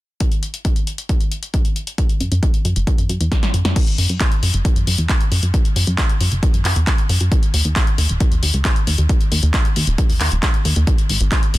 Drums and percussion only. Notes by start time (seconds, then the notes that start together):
0.20 kick, closed hi-hat
0.32 closed hi-hat
0.43 closed hi-hat
0.54 closed hi-hat
0.65 kick, closed hi-hat
0.76 closed hi-hat
0.87 closed hi-hat
0.98 closed hi-hat
1.09 kick, closed hi-hat
1.20 closed hi-hat
1.32 closed hi-hat
1.43 closed hi-hat
1.54 kick, closed hi-hat
1.65 closed hi-hat
1.76 closed hi-hat
1.87 closed hi-hat
1.98 kick, closed hi-hat
2.09 closed hi-hat
2.20 closed hi-hat
2.32 closed hi-hat
2.43 kick, closed hi-hat
2.54 closed hi-hat
2.65 closed hi-hat
2.76 closed hi-hat
2.87 kick, closed hi-hat
2.98 closed hi-hat
3.09 closed hi-hat
3.21 closed hi-hat
3.32 kick, snare, closed hi-hat
3.43 snare, closed hi-hat
3.54 closed hi-hat
3.65 snare, closed hi-hat
3.76 kick, closed hi-hat, crash
3.87 closed hi-hat
3.98 open hi-hat
4.09 closed hi-hat
4.20 kick, clap, closed hi-hat
4.32 closed hi-hat
4.43 open hi-hat
4.54 closed hi-hat
4.65 kick, closed hi-hat
4.76 closed hi-hat
4.87 open hi-hat
4.98 closed hi-hat
5.09 kick, clap, closed hi-hat
5.21 closed hi-hat
5.32 open hi-hat
5.43 closed hi-hat
5.54 kick, closed hi-hat
5.65 closed hi-hat
5.76 open hi-hat
5.87 closed hi-hat
5.98 kick, clap, closed hi-hat
6.09 closed hi-hat
6.21 open hi-hat
6.32 closed hi-hat
6.43 kick, closed hi-hat
6.54 closed hi-hat
6.65 clap, open hi-hat
6.76 closed hi-hat
6.87 kick, clap, closed hi-hat
6.98 closed hi-hat
7.09 open hi-hat
7.21 closed hi-hat
7.32 kick, closed hi-hat
7.43 closed hi-hat
7.54 open hi-hat
7.65 closed hi-hat
7.76 kick, clap, closed hi-hat
7.87 closed hi-hat
7.98 open hi-hat
8.09 closed hi-hat
8.20 kick, closed hi-hat
8.32 closed hi-hat
8.43 open hi-hat
8.54 closed hi-hat
8.65 kick, clap, closed hi-hat
8.76 closed hi-hat
8.87 open hi-hat
8.98 closed hi-hat
9.09 kick, closed hi-hat
9.21 closed hi-hat
9.32 open hi-hat
9.43 closed hi-hat
9.54 kick, clap, closed hi-hat
9.65 closed hi-hat
9.76 open hi-hat
9.87 closed hi-hat
9.98 kick, closed hi-hat
10.09 open hi-hat
10.21 clap, open hi-hat
10.32 closed hi-hat
10.43 kick, clap, closed hi-hat
10.54 closed hi-hat
10.65 open hi-hat
10.76 closed hi-hat
10.87 kick, closed hi-hat
10.98 closed hi-hat
11.09 open hi-hat
11.21 closed hi-hat
11.32 kick, clap, closed hi-hat
11.43 closed hi-hat
11.54 open hi-hat